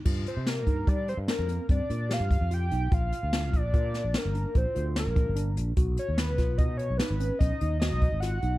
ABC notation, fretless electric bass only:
X:1
M:7/4
L:1/16
Q:1/4=147
K:Gm
V:1 name="Fretless electric bass" clef=bass
G,,2 z C,3 G,,2 G,3 G,, z F,,2 z G,, z B,,3 G,,2 F,,3 =B,,,2 | B,,,2 z D,,3 B,,,2 B,,3 B,,, z G,,,2 z B,,, z D,,3 B,,,2 G,,,3 B,,,2 | =B,,,2 z ^D,,3 B,,,2 =B,,3 B,,, z _A,,,2 z B,,, z D,,3 B,,,2 A,,,3 B,,,2 |]